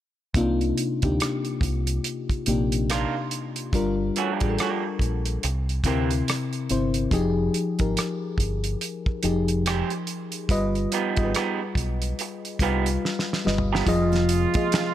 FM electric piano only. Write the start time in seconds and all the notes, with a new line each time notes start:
0.35 C3 A#3 D4 D#4 F4
1.03 C3 A#3 D4 D#4 G4
2.47 C3 A#3 D4 D#4 G4
3.73 G3 D4 F4 A#4
4.41 G3 D4 F4 G#4
4.49 A4
5.85 C3 C4 E4 A#4
6.70 C3 C4 E4 C5
7.12 F3 D#4 G4 G#4
7.79 F3 D#4 G4 A#4
9.23 F3 D#4 G4 G#4
10.50 G3 F4 B4 D#5
11.16 G3 F4 G#4 D#5
11.24 B4
12.61 G3 F4 B4 F5
13.45 G3 F4 B4 D#5
13.87 F3 F4 G#4 D#5
14.55 F3 F4 G#4 D#5